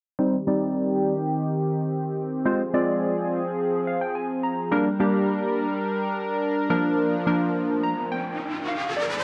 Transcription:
0.19 2.43 D#3 medium
0.19 0.36 G3 medium
0.19 4.68 C4 medium
0.19 0.36 C4 medium
0.19 0.36 D#4 medium
0.19 2.43 G4 medium
0.19 0.36 C5 medium
0.47 1.14 G3 medium
0.47 1.14 C4 medium
0.47 1.14 D#4 medium
0.47 1.14 D5 medium
2.45 4.70 F3 medium
2.45 2.62 G#3 medium
2.45 2.62 C4 medium
2.45 2.62 F4 medium
2.45 4.70 G#4 medium
2.45 2.62 C5 medium
2.74 3.40 G#3 medium
2.74 3.40 C4 medium
2.74 3.40 F4 medium
2.74 3.40 D5 medium
3.87 4.00 F5 medium
4.01 4.14 G5 medium
4.15 4.42 G#5 medium
4.43 4.70 A#5 medium
4.71 4.88 G3 medium
4.71 6.68 G3 medium
4.71 4.88 A#3 medium
4.71 4.88 D4 medium
4.71 9.21 D4 medium
4.71 4.88 A#4 medium
4.71 9.21 A#4 medium
5.00 5.66 G3 medium
5.00 5.66 A#3 medium
5.00 5.67 D4 medium
5.00 5.67 G4 medium
6.70 7.15 F3 medium
6.70 9.22 F3 medium
6.70 7.15 A#3 medium
6.70 7.15 D4 medium
6.70 7.15 A#4 medium
6.98 riser medium
7.27 7.93 F3 medium
7.27 7.93 A#3 medium
7.27 7.93 D4 medium
7.27 7.93 A#4 medium
7.83 8.10 A#5 medium
8.12 8.64 G5 medium
8.68 8.95 F5 medium
8.97 9.23 D5 medium

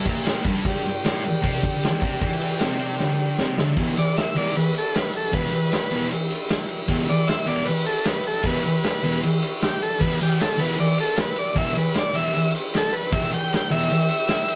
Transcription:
0.00 0.60 G4 medium
0.00 0.61 B4 medium
0.06 0.45 A#2 loud
0.06 0.25 E5 medium
0.06 kick loud
0.06 ride medium
0.26 0.44 G5 medium
0.26 snare loud
0.26 ride loud
0.44 0.63 G2 loud
0.44 0.63 B5 medium
0.44 kick loud
0.44 ride medium
0.65 0.84 G2 loud
0.65 3.73 G4 medium
0.65 3.74 D5 medium
0.65 3.38 G5 medium
0.65 kick loud
0.65 ride loud
0.85 1.00 G2 medium
0.85 ride medium
1.05 1.23 A2 loud
1.05 snare loud
1.05 ride loud
1.24 muted distorted electric guitar stroke medium
1.24 ride medium
1.42 1.61 C3 loud
1.42 kick loud
1.42 ride loud
1.63 1.82 D3 loud
1.63 kick loud
1.63 ride medium
1.83 muted distorted electric guitar stroke medium
1.83 snare loud
1.83 ride loud
2.02 2.24 C3 loud
2.02 kick loud
2.02 ride medium
2.22 2.61 E3 loud
2.22 kick loud
2.22 ride loud
2.42 ride medium
2.60 3.00 C3 loud
2.60 snare loud
2.60 ride loud
2.80 ride medium
3.00 3.39 D3 loud
3.00 snare medium
3.39 3.58 C3 loud
3.39 3.57 G5 medium
3.39 snare loud
3.58 3.77 D3 loud
3.58 3.77 E5 medium
3.58 snare loud
3.77 3.93 E2 medium
3.77 3.93 B2 medium
3.77 3.94 E3 loud
3.77 6.87 G4 medium
3.77 kick loud
3.77 ride loud
3.81 6.88 B4 medium
3.81 6.88 E5 medium
3.97 4.17 D5 loud
3.97 ride medium
4.17 4.36 E5 medium
4.17 snare loud
4.17 ride loud
4.35 4.51 E2 medium
4.35 4.52 B2 loud
4.35 4.52 E3 loud
4.35 4.56 D5 loud
4.35 ride medium
4.55 4.75 B4 medium
4.55 ride loud
4.74 4.96 A4 medium
4.74 ride medium
4.94 5.14 B4 medium
4.94 snare loud
4.94 ride loud
5.14 5.34 A4 medium
5.14 ride medium
5.33 5.49 E2 loud
5.33 5.49 B2 loud
5.33 5.50 E3 loud
5.33 6.09 B4 loud
5.33 kick loud
5.33 ride medium
5.53 ride medium
5.72 snare loud
5.72 ride loud
5.91 6.07 E2 loud
5.91 6.08 B2 medium
5.91 6.08 E3 loud
5.91 ride medium
6.11 ride loud
6.31 ride medium
6.49 snare loud
6.49 ride loud
6.69 ride medium
6.88 7.04 E2 loud
6.88 7.05 B2 loud
6.88 7.06 E3 loud
6.88 9.97 G4 medium
6.88 9.98 B4 medium
6.88 9.99 E5 medium
6.88 kick loud
6.88 ride loud
7.08 7.28 D5 loud
7.08 ride medium
7.28 7.47 E5 medium
7.28 snare loud
7.28 ride loud
7.46 7.63 E2 medium
7.46 7.63 B2 loud
7.46 7.64 E3 loud
7.46 7.67 D5 loud
7.46 ride medium
7.65 7.86 B4 loud
7.65 ride loud
7.85 8.06 A4 loud
7.85 ride medium
8.04 8.26 B4 medium
8.04 snare loud
8.04 ride loud
8.24 8.46 A4 medium
8.24 ride medium
8.43 8.61 E2 loud
8.43 8.61 B2 loud
8.43 8.61 E3 loud
8.43 9.21 B4 loud
8.43 kick loud
8.43 ride loud
8.63 ride medium
8.83 snare loud
8.83 ride loud
9.03 9.19 E2 loud
9.03 9.19 B2 loud
9.03 9.20 E3 loud
9.03 ride medium
9.23 ride loud
9.43 ride medium
9.61 9.82 G4 loud
9.61 snare loud
9.61 ride loud
9.82 10.01 A4 medium
9.82 ride medium
10.00 10.16 E2 medium
10.00 10.17 B2 loud
10.00 10.17 E3 loud
10.00 13.08 G4 medium
10.00 10.20 B4 loud
10.00 13.09 B4 medium
10.00 kick loud
10.00 crash loud
10.05 13.10 E5 medium
10.21 10.41 G4 loud
10.21 ride medium
10.40 10.60 A4 loud
10.40 snare loud
10.40 ride loud
10.58 10.75 E2 loud
10.58 10.75 B2 medium
10.58 10.76 E3 loud
10.58 10.79 B4 loud
10.58 ride medium
10.78 10.99 D5 medium
10.78 ride loud
10.98 11.19 A4 loud
10.98 ride medium
11.16 snare loud
11.16 ride loud
11.21 11.38 B4 medium
11.36 11.57 D5 medium
11.36 ride medium
11.55 11.72 E2 medium
11.55 11.72 B2 loud
11.55 11.72 E3 loud
11.55 11.76 E5 medium
11.55 kick loud
11.55 ride loud
11.75 11.96 B4 loud
11.75 ride medium
11.94 snare loud
11.94 ride loud
11.99 12.16 D5 loud
12.13 12.30 E2 medium
12.13 12.30 B2 loud
12.13 12.31 E3 loud
12.13 12.53 E5 loud
12.13 ride medium
12.34 ride loud
12.55 ride medium
12.74 12.95 A4 loud
12.74 snare loud
12.74 ride loud
12.93 13.12 B4 loud
12.93 ride medium
13.12 13.28 E2 loud
13.12 13.29 B2 loud
13.12 13.29 E3 loud
13.12 14.55 G4 medium
13.12 14.55 B4 medium
13.12 13.32 E5 loud
13.12 14.55 G5 medium
13.12 kick loud
13.12 ride loud
13.33 13.71 G5 loud
13.33 ride medium
13.53 snare loud
13.53 ride loud
13.71 13.86 E2 loud
13.71 13.87 B2 loud
13.71 13.87 E3 loud
13.71 14.55 E5 loud
13.71 ride medium
13.90 ride loud
14.09 ride medium
14.28 snare loud
14.28 ride loud
14.48 ride medium

